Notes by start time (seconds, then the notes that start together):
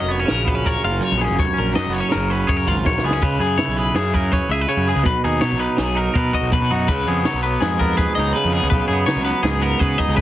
Already playing: F#2 F#3 F#4 D#5
0.02 F1
0.08 B3 C#5, closed hi-hat
0.20 C#4
0.26 C#3 A#4, snare, closed hi-hat
0.30 A#1
0.45 B3 B4, kick, closed hi-hat
0.55 C#4
0.66 A#4 C#5, kick, closed hi-hat
0.84 F#1 F4 F5, closed hi-hat
1.00 F#2 C#5, closed hi-hat
1.12 A#1
1.17 B3 G#4, snare, closed hi-hat
1.24 C#4
1.30 F#1
1.35 F#2
1.39 F1 C#5, kick, closed hi-hat
1.54 C#4, closed hi-hat
1.58 A#1 A#4
1.73 F#3 D#5, snare, closed hi-hat
1.77 F#2
1.86 F#1 B3
1.93 C#5, closed hi-hat
2.00 C#4
2.09 C#3 A#4, snare, closed hi-hat
2.15 F#1
2.30 C#4 B4, closed hi-hat
2.47 F#2 G#4 C#5, kick, closed hi-hat
2.57 A#4
2.67 G#1 F4 F5, kick, snare, closed hi-hat
2.85 A#1 F#2 C#5, kick, snare
2.98 snare
3.03 C#2 B3 G#4
3.11 C#4, snare
3.22 C#2 C#3 B4, kick, closed hi-hat
3.39 F#2 G#4, closed hi-hat
3.58 C#3 E4 C#5, snare, closed hi-hat
3.67 B1
3.77 G#4 B4, closed hi-hat
3.94 F#2 C#3 G#4, snare, closed hi-hat
4.14 G#4 A#4, kick, closed hi-hat
4.32 B4 C#5, kick, closed hi-hat
4.49 C#2 E5, closed hi-hat
4.53 G#4
4.61 B4
4.69 C#3 C#5, closed hi-hat
4.77 F#2
4.87 G#4, closed hi-hat
4.96 C#2
5.03 B1 B2 B4, kick, closed hi-hat
5.24 D#2 D#4 G#4, closed hi-hat
5.41 B2 F#3 C#5, snare, closed hi-hat
5.52 B1
5.59 D#4 B4, closed hi-hat
5.77 B1 F#3 G#4, snare, closed hi-hat
5.95 D#4 A#4, closed hi-hat
6.14 B2 A#4 B4, kick, snare, closed hi-hat
6.33 F#4 D#5, kick, closed hi-hat
6.41 B1
6.52 B2 B4, kick, closed hi-hat
6.62 B2
6.70 F#2 D#4 F#4, closed hi-hat
6.88 C#2 C#3 B4, kick, closed hi-hat
7.07 F2 B3 G#4, closed hi-hat
7.24 C#3 F#3 C#5, snare, closed hi-hat
7.34 B1
7.43 B3 B4, closed hi-hat
7.60 F2 G#2 G#4, snare, closed hi-hat
7.79 B3 A#4, kick, closed hi-hat
7.97 G#4 B4, kick, snare, closed hi-hat
8.15 C#2 D#5, snare, closed hi-hat
8.19 D#4
8.33 C#3 B4, closed hi-hat
8.44 F2
8.53 G#4, closed hi-hat
8.57 B3
8.63 C#2
8.70 B1 C#3 B4, kick, closed hi-hat
8.88 F#2 G#4, closed hi-hat
8.93 B3
9.06 C#3 F#3 C#5, snare, closed hi-hat
9.16 C#2
9.25 B3 B4, snare, closed hi-hat
9.43 C#2 G#2 G#4, snare, closed hi-hat
9.62 B3 A#4, closed hi-hat
9.79 C#3 G#4 B4, kick, closed hi-hat
9.98 D#4 D#5, kick, snare, closed hi-hat
10.08 C#2
10.15 C#3 B4, kick, snare